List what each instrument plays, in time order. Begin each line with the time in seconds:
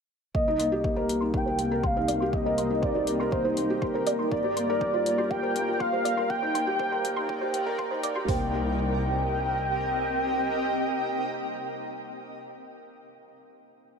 0.34 double bass section C2, felt piano A#3, ambient pad C4 G4, soft synth lead D#5, kick
0.47 felt piano D#4, ambient pad A#4, synth arpeggio sound C5
0.59 felt piano A#3, synth arpeggio sound C6, closed hi-hat
0.72 felt piano G4
0.84 felt piano A#3, synth arpeggio sound C5, kick
0.95 ambient pad D#4, felt piano A#4, synth arpeggio sound C5
1.09 felt piano A#3, closed hi-hat
1.21 felt piano D#4, synth arpeggio sound C6
1.34 felt piano A#3, soft synth lead G5, kick
1.46 felt piano G4, synth arpeggio sound C5
1.59 felt piano A#3, closed hi-hat
1.71 felt piano A#4
1.83 soft synth lead F5, synth arpeggio sound C6, kick
1.96 felt piano D#4, synth arpeggio sound C5
2.08 felt piano A#3, synth arpeggio sound D5, closed hi-hat
2.20 felt piano G4, synth arpeggio sound C6
2.33 felt piano A#3, soft synth lead D#5, kick
2.46 felt piano A#4, synth arpeggio sound C5
2.58 felt piano A#3, synth arpeggio sound C6, closed hi-hat
2.70 felt piano D#4
2.82 felt piano A#3, synth arpeggio sound C5, soft synth lead D5, kick
2.95 felt piano G4, synth arpeggio sound C5
3.07 felt piano A#3, closed hi-hat
3.20 felt piano A#4, synth arpeggio sound C6
3.31 felt piano A#3, soft synth lead C5, kick
3.44 felt piano D#4, synth arpeggio sound C5
3.57 felt piano A#3, closed hi-hat
3.70 felt piano G4
3.82 felt piano A#3, synth arpeggio sound C6, kick
3.94 felt piano A#4, synth arpeggio sound C5
4.07 felt piano A#3, synth arpeggio sound D5, closed hi-hat
4.19 felt piano D#4, synth arpeggio sound C6
4.31 double bass section G1, ambient pad G3, felt piano A#3, soft synth lead D5, kick
4.44 felt piano G4, synth arpeggio sound C5, ambient pad F5
4.57 felt piano A#3, synth arpeggio sound C6, closed hi-hat
4.70 felt piano A#4
4.81 synth arpeggio sound C5, kick
4.94 felt piano F4, synth arpeggio sound C5
5.06 felt piano A#3, closed hi-hat
5.18 felt piano G4, synth arpeggio sound C6
5.30 felt piano A#3, soft synth lead G5, kick
5.42 felt piano A#4, synth arpeggio sound C5
5.56 felt piano A#3, closed hi-hat
5.68 felt piano F4
5.80 felt piano A#3, soft synth lead F5, synth arpeggio sound C6, kick
5.92 felt piano G4, synth arpeggio sound C5
6.05 felt piano A#3, synth arpeggio sound D5, closed hi-hat
6.17 felt piano A#4, synth arpeggio sound C6
6.30 double bass section D#2, felt piano A#3, ambient pad D#4, soft synth lead G5, kick
6.42 felt piano D#4, synth arpeggio sound C5
6.51 felt piano A#3, ambient pad D5, synth arpeggio sound C6
6.55 closed hi-hat
6.67 felt piano G4
6.76 felt piano A#3, synth arpeggio sound C5, ambient pad G5, kick
6.91 felt piano A#4, synth arpeggio sound C5
7.05 felt piano A#3, closed hi-hat
7.16 felt piano D#4, synth arpeggio sound C6
7.29 felt piano A#3, kick
7.41 felt piano G4, synth arpeggio sound C5
7.54 felt piano A#3, closed hi-hat
7.66 felt piano A#4
7.78 felt piano A#3, synth arpeggio sound C6, kick
7.91 felt piano D#4, synth arpeggio sound C5
8.03 felt piano A#3, synth arpeggio sound D5, closed hi-hat
8.15 felt piano G4, synth arpeggio sound C6
8.28 double bass section C2, felt piano A#3, ambient pad C4, synth arpeggio sound C5, soft synth lead G5, kick, floor tom, open hi-hat
8.35 ambient pad G4
8.43 ambient pad A#4
8.51 ambient pad D#5